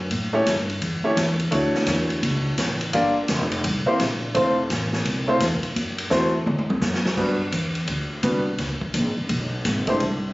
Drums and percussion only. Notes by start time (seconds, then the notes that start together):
0.11 kick, ride
0.46 kick, snare, hi-hat pedal, ride
0.70 ride
0.82 kick, ride
1.17 kick, snare, hi-hat pedal, ride
1.40 ride
1.52 kick, ride
1.75 snare
1.86 kick, snare, hi-hat pedal, ride
2.10 ride
2.23 kick, ride
2.58 kick, snare, hi-hat pedal, ride
2.81 ride
2.93 kick, ride
3.28 kick, snare, hi-hat pedal, ride
3.52 ride
3.64 kick, ride
4.00 kick, snare, hi-hat pedal, ride
4.35 kick, ride
4.70 kick, snare, hi-hat pedal, ride
4.93 snare
5.05 kick, ride
5.40 kick, snare, hi-hat pedal, ride
5.63 ride
5.76 kick, ride
5.98 ride
6.11 kick, snare, hi-hat pedal
6.47 mid tom
6.58 mid tom
6.70 high tom
6.81 snare, hi-hat pedal
6.94 snare
7.05 snare
7.17 kick, crash
7.52 kick, hi-hat pedal, ride
7.75 ride
7.88 kick, ride
8.23 kick, hi-hat pedal, ride
8.58 kick, snare, ride
8.81 kick
8.94 kick, hi-hat pedal, ride
9.29 kick, ride
9.65 kick, snare, hi-hat pedal, ride
9.87 kick, ride
10.00 kick, ride